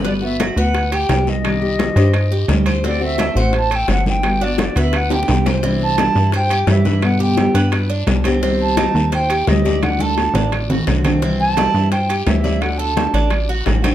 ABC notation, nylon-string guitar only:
X:1
M:4/4
L:1/8
Q:1/4=172
K:G
V:1 name="Nylon-string guitar"
[G,B,F] [B,F]2 [B,F] z2 [G,B,F]2 | [C,_E,G,DG] [E,G,G]2 [E,G,DG] z2 [G,DG]2 | [D,A,CF] [A,CF]2 [A,CF] z2 [D,A,CF]2 | [G,B,F] [B,F]2 [B,F] z2 [G,B,F]2 |
[C,E,G,DE]2 [E,G,DE]2 z2 [E,G,DE] [E,G,DE] | [B,,D,G,B,G]2 [D,G,B,G]2 z2 [D,G,B,G] [D,G,B,G] | [C,_E,G,CG]2 [E,G,CG]2 z2 [E,G,CG] [E,G,CG] | [D,A,DF]2 [D,A,DF]2 z2 [D,A,DF] [A,DF] |
[C,E,G,CE]2 [E,G,CE]2 z2 [E,G,CE] [E,G,CE] | [D,A,DF]2 [D,A,DF]2 z2 [D,A,DF] [A,DF] |]